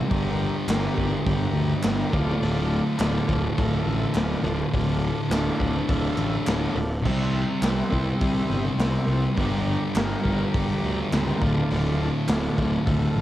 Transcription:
Already playing: distorted electric guitar G3
0.08 fingered electric bass G1, distorted electric guitar G2 D3, transistor combo organ G4 A#4 D5, kick, open hi-hat
0.13 distorted electric guitar G3
0.67 fingered electric bass G1, transistor combo organ G4 A#4 D5, snare, clap, open hi-hat
0.94 fingered electric bass G1, distorted electric guitar D3 G3, kick
0.99 distorted electric guitar G2
1.25 fingered electric bass G1, transistor combo organ G4 A#4 D5, kick, open hi-hat
1.53 fingered electric bass D2
1.83 fingered electric bass G1, transistor combo organ G4, snare, clap, open hi-hat
1.87 transistor combo organ A#4 D5
2.11 fingered electric bass D1, distorted electric guitar D2 A2, transistor combo organ F4 A4 D5, kick
2.15 distorted electric guitar D3
2.42 fingered electric bass D1, open hi-hat
2.98 fingered electric bass D1, distorted electric guitar D2 A2, transistor combo organ F4, snare, clap, open hi-hat
3.02 distorted electric guitar D3, transistor combo organ A4 D5
3.29 fingered electric bass D1, kick
3.58 fingered electric bass D1, transistor combo organ F4 A4 E5, kick, open hi-hat
3.86 fingered electric bass A1
4.14 fingered electric bass D1, transistor combo organ F4 A4 D5, snare, clap, open hi-hat
4.43 fingered electric bass D1, distorted electric guitar D2 A2
4.47 distorted electric guitar D3
4.73 fingered electric bass D1, transistor combo organ F4 A4 D5, kick, open hi-hat
5.29 fingered electric bass D1, distorted electric guitar D2 A2 D3, transistor combo organ F4 A4 D5, snare, clap, open hi-hat
5.60 fingered electric bass D1, kick
5.88 fingered electric bass D1, transistor combo organ F4 A4 E5, kick, open hi-hat
6.17 fingered electric bass A1, clap
6.45 fingered electric bass D1, transistor combo organ F4 A4 D5, snare, clap, open hi-hat
6.75 fingered electric bass D1
7.02 fingered electric bass C2, distorted electric guitar C3 G3, transistor combo organ G4 C5 E5, kick, crash
7.06 distorted electric guitar C4
7.62 fingered electric bass C2, transistor combo organ G4 C5 E5, snare, clap, open hi-hat
7.90 fingered electric bass C2, distorted electric guitar C3 G3 C4, kick
8.17 fingered electric bass C2, transistor combo organ G4 C5 E5, open hi-hat
8.21 kick
8.50 fingered electric bass G1
8.77 fingered electric bass C2, transistor combo organ G4 C5 E5, snare, clap, open hi-hat
9.07 fingered electric bass C2
9.35 fingered electric bass G1, distorted electric guitar G2 D3 G3, transistor combo organ G4 A#4 D5, kick, open hi-hat
9.95 fingered electric bass G1, transistor combo organ G4 A#4 F5, snare, clap, open hi-hat
10.22 fingered electric bass G1, distorted electric guitar G2 D3 G3, kick
10.51 fingered electric bass G1, transistor combo organ G4 A#4 D5, kick, open hi-hat
10.83 fingered electric bass D2
11.12 fingered electric bass C#2, transistor combo organ G4 A#4, snare, clap, open hi-hat
11.16 transistor combo organ C5
11.39 fingered electric bass D1, distorted electric guitar D2 A2, transistor combo organ F4 A4 D5, kick
11.44 distorted electric guitar D3
11.71 fingered electric bass D1, open hi-hat
12.27 fingered electric bass D1, distorted electric guitar D2 A2, transistor combo organ F4 A4 D5, snare, clap, open hi-hat
12.32 distorted electric guitar D3
12.58 fingered electric bass D1, kick
12.85 fingered electric bass D1, transistor combo organ F4 A4 E5, kick, open hi-hat
13.16 fingered electric bass A1

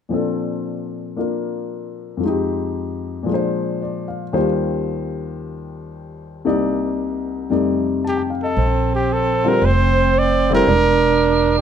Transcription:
0.09 grand piano A#2 F3 C4 D4
0.14 grand piano A4
1.16 grand piano A#3 D4 F4 A#4
2.17 grand piano F2 F3
2.23 grand piano G#3 D#4
2.28 grand piano G4
3.23 grand piano A#2 F3
3.29 grand piano G#3 D4
3.34 grand piano C5
3.82 grand piano D5
4.08 grand piano F5
4.33 grand piano D#2 D#3 G3 F4 C5
6.45 grand piano C2 C3 A#3 D#4 D5
7.50 grand piano F2 C3 G3 A3 D#4 D5
8.05 trumpet G4, grand piano A5
8.17 grand piano G5
8.30 grand piano F5
8.43 trumpet A4, grand piano D#5
8.57 upright bass A#1, tenor saxophone C4
8.96 trumpet G4
9.13 trumpet A4
9.44 grand piano D3 G3 C4 F4, trumpet A#4
9.62 upright bass F1, trumpet C5
10.18 trumpet D5
10.50 grand piano D3 G3 C4 E4
10.55 trumpet A#4
10.67 upright bass E1, tenor saxophone D4

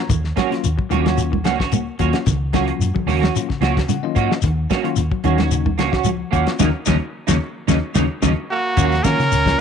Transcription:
0.09 fingered electric bass D#2, clean electric guitar D#3, kick, closed hi-hat, high conga, low conga, shekere
0.24 snare
0.36 clean electric guitar A#3 C#4 F#4, kick, snare, closed hi-hat, high conga, shekere
0.50 tine electric piano F#3 A#3 C#4 F4, muted clean electric guitar stroke, snare, closed hi-hat
0.64 fingered electric bass D#2, closed hi-hat, high conga, shekere
0.78 clean electric guitar F#3, kick
0.90 fingered electric bass D#2, clean electric guitar D#3 A#3 C#4 F#4, tine electric piano F#3 A#3 C#4 F4, closed hi-hat, high conga, low conga, shekere
1.05 clean electric guitar C#4 F#4, snare, closed hi-hat, high conga
1.18 muted clean electric guitar stroke, closed hi-hat, high conga, shekere
1.32 clean electric guitar D#3, kick, high conga
1.44 fingered electric bass C#2, clean electric guitar C#3 A#3 C#4 F#4, snare, closed hi-hat, high conga, shekere
1.59 clean electric guitar C#4 F#4, kick, snare
1.72 clean electric guitar A#3, closed hi-hat, high conga, shekere
1.99 fingered electric bass D#2, clean electric guitar F#3 A#3 C#4 F#4, tine electric piano F#3 A#3 C#4 F4, kick, closed hi-hat, shekere
2.13 snare, closed hi-hat
2.26 fingered electric bass C#2, clean electric guitar D#3, kick, snare, closed hi-hat, high conga, low conga, shekere
2.53 clean electric guitar F#3 A#3 C#4 F#4, tine electric piano F#3 A#3 C#4 F4, kick, snare, closed hi-hat, high conga, shekere
2.68 clean electric guitar F3, closed hi-hat
2.79 fingered electric bass F#2, closed hi-hat, high conga, shekere
2.95 clean electric guitar F#3, kick, low conga
3.06 fingered electric bass D#2, clean electric guitar C#3 A#3 C#4 F#4, open hi-hat, high conga, low conga, shekere
3.21 clean electric guitar D#3 C#4 F#4, snare, closed hi-hat, high conga
3.35 tine electric piano F#3 A#3 C#4 F4, closed hi-hat, high conga, shekere
3.49 clean electric guitar C#3, kick, snare
3.60 fingered electric bass C#2, tine electric piano F#3 A#3 C#4 F4, clean electric guitar A#3 C#4 F#4, snare, closed hi-hat, high conga, shekere
3.77 kick, snare, closed hi-hat
3.88 clean electric guitar C#3, tine electric piano C#4 F4 F#5, closed hi-hat, high conga, shekere
4.03 clean electric guitar D#3, tine electric piano F#3 A#3 C#4 F4 D#5
4.15 fingered electric bass G#2, clean electric guitar A#3 C#4 F#4, kick, closed hi-hat, shekere
4.32 snare
4.42 fingered electric bass D#2, clean electric guitar D#3, kick, closed hi-hat, high conga, low conga, shekere
4.70 clean electric guitar A#3 C#4 F#4, kick, snare, closed hi-hat, high conga, shekere
4.83 clean electric guitar D#3, tine electric piano F#3 A#3 C#4 F4, closed hi-hat
4.96 fingered electric bass D#2, closed hi-hat, high conga, shekere
5.12 clean electric guitar F#3, kick
5.24 fingered electric bass D#2, clean electric guitar D#3 A#3 C#4 F#4, tine electric piano F#3 A#3 C#4 D#4, closed hi-hat, high conga, low conga, shekere
5.38 clean electric guitar C#4 F#4, snare, closed hi-hat, high conga
5.51 clean electric guitar C#3, closed hi-hat, high conga, shekere
5.66 clean electric guitar D#3, kick, high conga
5.78 fingered electric bass C#2, clean electric guitar C#3 A#3 C#4 F#4, snare, closed hi-hat, high conga, shekere
5.92 clean electric guitar C#4 F#4, kick, snare
6.04 clean electric guitar F3, closed hi-hat, high conga, shekere
6.31 fingered electric bass D#2, tine electric piano F#3 A#3 C#4 F4, clean electric guitar F#3 A#3 C#4 F#4, kick, closed hi-hat, shekere
6.47 snare, closed hi-hat
6.59 fingered electric bass D#2, clean electric guitar C#3 D#3 F#3 A#3 C#4 D#4, tine electric piano A#3 C#4 D#4, kick, snare, high conga, shekere
6.86 fingered electric bass D#2, clean electric guitar C#3 D#3 F#3 A#3 C#4 D#4, tine electric piano A#3 C#4 D#4, kick, snare, high conga, shekere
7.27 fingered electric bass D#2, clean electric guitar C#3 D#3 F#3 A#3 C#4 D#4, tine electric piano A#3 C#4 D#4, kick, snare, high conga, shekere
7.67 fingered electric bass D#2, clean electric guitar C#3 D#3 F#3 A#3 C#4 D#4, tine electric piano A#3 C#4 D#4, kick, snare, high conga, shekere
7.94 fingered electric bass D#2, clean electric guitar C#3 D#3 F#3 A#3 C#4 D#4, tine electric piano A#3 C#4 D#4, kick, snare, high conga, shekere
8.22 fingered electric bass D#2, clean electric guitar C#3 D#3 F#3 A#3 C#4 D#4, tine electric piano A#3 C#4 D#4, kick, snare, high conga, shekere
8.50 alto saxophone A#3, trumpet F#4
8.77 fingered electric bass D#2, clean electric guitar D#3 A#3 C#4 F#4, tine electric piano F#3 A#3 C#4 F4, kick, closed hi-hat, high conga, shekere
8.92 snare, shekere
9.04 fingered electric bass D#3, tine electric piano F#3 A#3 C#4 F4, clean electric guitar A#3 C#4, alto saxophone C#4, trumpet A#4, muted clean electric guitar stroke, kick, snare, closed hi-hat, high conga, shekere
9.19 fingered electric bass C#3, clean electric guitar D#3, snare, closed hi-hat, shekere
9.32 fingered electric bass C#2, snare, closed hi-hat, high conga, shekere
9.45 tine electric piano F#3 A#3 C#4 F4, kick, snare, shekere

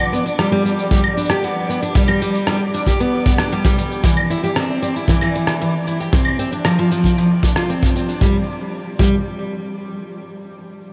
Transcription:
Already playing: steel-string acoustic guitar B3, synth texture D5 D6
0.00 claves
0.13 steel-string acoustic guitar B3, shaker
0.26 steel-string acoustic guitar D4, shaker
0.39 steel-string acoustic guitar G3, cross-stick, shaker
0.52 steel-string acoustic guitar G3
0.65 steel-string acoustic guitar G3, shaker
0.79 shaker
0.91 steel-string acoustic guitar G3, kick, shaker
1.04 claves
1.17 steel-string acoustic guitar D4, shaker
1.25 shaker
1.30 steel-string acoustic guitar G4, cross-stick
1.44 steel-string acoustic guitar B3, shaker
1.69 steel-string acoustic guitar B3, shaker
1.83 steel-string acoustic guitar D4, shaker
1.95 steel-string acoustic guitar G3, kick, shaker
2.08 steel-string acoustic guitar G3, claves
2.22 steel-string acoustic guitar G3, shaker
2.35 shaker
2.47 steel-string acoustic guitar G3, cross-stick, shaker
2.74 steel-string acoustic guitar D4, shaker
2.86 steel-string acoustic guitar G4, kick, shaker
3.00 steel-string acoustic guitar B3, shaker
3.26 steel-string acoustic guitar B3, kick, shaker
3.38 steel-string acoustic guitar D4, cross-stick, shaker
3.52 steel-string acoustic guitar G3
3.65 steel-string acoustic guitar G3, kick
3.78 steel-string acoustic guitar G3, shaker
3.92 shaker
4.04 steel-string acoustic guitar E3, kick, shaker
4.17 claves
4.30 steel-string acoustic guitar E4, shaker
4.44 steel-string acoustic guitar G4, shaker
4.56 steel-string acoustic guitar C4, cross-stick, shaker
4.82 steel-string acoustic guitar C4, shaker
4.96 steel-string acoustic guitar E4, shaker
5.08 steel-string acoustic guitar E3, kick, shaker
5.21 steel-string acoustic guitar E3, claves
5.35 steel-string acoustic guitar E3, shaker
5.47 cross-stick
5.61 steel-string acoustic guitar E3, shaker
5.87 steel-string acoustic guitar E4, shaker
6.00 steel-string acoustic guitar G4, shaker
6.13 steel-string acoustic guitar C4, kick, shaker
6.25 claves
6.39 steel-string acoustic guitar C4, shaker
6.52 steel-string acoustic guitar D4, shaker
6.65 steel-string acoustic guitar F3, cross-stick, claves, shaker
6.79 steel-string acoustic guitar F3
6.92 steel-string acoustic guitar F3, shaker
7.04 kick, shaker
7.18 steel-string acoustic guitar F3, shaker
7.43 steel-string acoustic guitar D4, kick, shaker
7.56 steel-string acoustic guitar F4, cross-stick, shaker
7.70 steel-string acoustic guitar C4, shaker
7.83 kick
7.96 steel-string acoustic guitar C4, shaker
8.09 steel-string acoustic guitar D4, shaker
8.21 steel-string acoustic guitar G3, kick
8.99 steel-string acoustic guitar G3, kick

